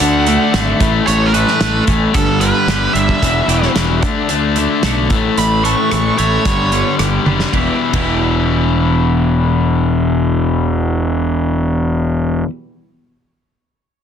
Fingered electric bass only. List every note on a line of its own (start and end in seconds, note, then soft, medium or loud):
0.01 0.37 D2 medium
0.54 0.72 G#1 medium
0.81 0.99 A1 medium
1.08 1.44 A1 medium
1.61 1.79 A1 medium
1.88 2.06 A1 medium
2.15 2.51 G1 medium
2.67 2.86 G1 medium
2.95 3.13 G1 medium
3.22 3.40 E1 medium
3.48 3.66 E1 medium
3.76 4.03 E1 medium
4.03 4.21 D2 medium
4.30 4.66 D2 medium
4.84 5.11 B1 medium
5.11 5.29 A1 medium
5.38 5.74 A1 medium
5.92 6.10 A1 medium
6.19 6.37 A1 medium
6.46 6.82 G1 medium
6.99 7.17 G1 medium
7.26 7.44 F#1 medium
7.53 7.68 E1 medium
7.93 12.42 E1 medium